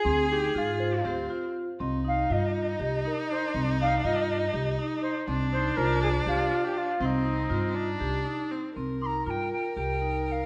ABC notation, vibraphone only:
X:1
M:7/8
L:1/8
Q:1/4=120
K:Cm
V:1 name="Vibraphone"
C E F2 G F2 | C E F2 G E2 | C E F2 G E2 | C E F2 G F2 |
C E F2 G E2 | C E F2 G E2 |]